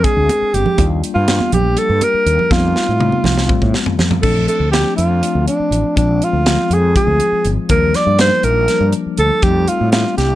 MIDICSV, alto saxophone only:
0, 0, Header, 1, 2, 480
1, 0, Start_track
1, 0, Tempo, 494234
1, 758, Time_signature, 7, 3, 24, 8
1, 10053, End_track
2, 0, Start_track
2, 0, Title_t, "Alto saxophone"
2, 0, Program_c, 0, 65
2, 40, Note_on_c, 0, 68, 81
2, 524, Note_on_c, 0, 67, 76
2, 538, Note_off_c, 0, 68, 0
2, 859, Note_off_c, 0, 67, 0
2, 1109, Note_on_c, 0, 65, 74
2, 1448, Note_off_c, 0, 65, 0
2, 1493, Note_on_c, 0, 67, 80
2, 1731, Note_on_c, 0, 69, 89
2, 1746, Note_off_c, 0, 67, 0
2, 1974, Note_on_c, 0, 70, 100
2, 1988, Note_off_c, 0, 69, 0
2, 2448, Note_on_c, 0, 65, 81
2, 2462, Note_off_c, 0, 70, 0
2, 3642, Note_off_c, 0, 65, 0
2, 4100, Note_on_c, 0, 69, 75
2, 4331, Note_off_c, 0, 69, 0
2, 4353, Note_on_c, 0, 69, 73
2, 4574, Note_off_c, 0, 69, 0
2, 4580, Note_on_c, 0, 67, 78
2, 4811, Note_off_c, 0, 67, 0
2, 4820, Note_on_c, 0, 65, 77
2, 5274, Note_off_c, 0, 65, 0
2, 5317, Note_on_c, 0, 62, 73
2, 5763, Note_off_c, 0, 62, 0
2, 5800, Note_on_c, 0, 62, 76
2, 6060, Note_on_c, 0, 65, 88
2, 6075, Note_off_c, 0, 62, 0
2, 6540, Note_on_c, 0, 68, 81
2, 6555, Note_off_c, 0, 65, 0
2, 6758, Note_off_c, 0, 68, 0
2, 6764, Note_on_c, 0, 68, 91
2, 7263, Note_off_c, 0, 68, 0
2, 7483, Note_on_c, 0, 70, 92
2, 7729, Note_on_c, 0, 74, 102
2, 7743, Note_off_c, 0, 70, 0
2, 7963, Note_off_c, 0, 74, 0
2, 7971, Note_on_c, 0, 72, 92
2, 8199, Note_on_c, 0, 70, 92
2, 8214, Note_off_c, 0, 72, 0
2, 8657, Note_off_c, 0, 70, 0
2, 8925, Note_on_c, 0, 69, 91
2, 9159, Note_on_c, 0, 67, 81
2, 9173, Note_off_c, 0, 69, 0
2, 9409, Note_on_c, 0, 65, 79
2, 9424, Note_off_c, 0, 67, 0
2, 9628, Note_off_c, 0, 65, 0
2, 9634, Note_on_c, 0, 65, 72
2, 9860, Note_off_c, 0, 65, 0
2, 9882, Note_on_c, 0, 67, 77
2, 10053, Note_off_c, 0, 67, 0
2, 10053, End_track
0, 0, End_of_file